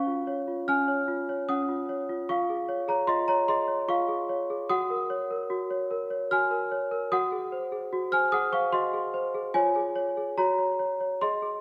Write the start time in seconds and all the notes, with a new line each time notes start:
Already playing: C#4 F5 C#6
0.07 F4
0.27 C#5
0.48 F4
0.68 C#4 G#5 F6
0.88 C#5
1.08 F4
1.29 C#5
1.49 C#4 F#5 D#6
1.69 F4
1.89 C#5
2.09 F4
2.29 F4 F5 C#6
2.50 G#4
2.68 C#5
2.88 G#4 C#5 A#5
3.07 F4 D#5 C6
3.28 C#5 A#5
3.48 G#4 D#5 C6
3.68 C#5
3.88 F4 F5 C#6
4.08 G#4
4.29 C#5
4.50 G#4
4.69 F#4 F#5 D#6
4.90 A#4
5.10 C#5
5.31 A#4
5.50 F#4
5.71 C#5
5.91 A#4
6.10 C#5
6.31 F#4 G#5 F6
6.51 A#4
6.71 C#5
6.91 A#4
7.12 F#4 F#5 D#6
7.32 G#4
7.52 C5
7.72 G#4
7.93 F#4
8.12 C5 G#5 F6
8.32 G#4 F#5 D#6
8.52 C5 F5 C#6
8.72 F#4 D#5 C6
8.93 G#4
9.14 C5
9.34 G#4
9.54 F4 C#5 G#5
9.75 G#4
9.95 C#5
10.17 G#4
10.38 F#4 C#5 A#5
10.58 C#5
10.79 C#5
11.00 C#5
11.21 G#4 D#5 C6
11.42 G#4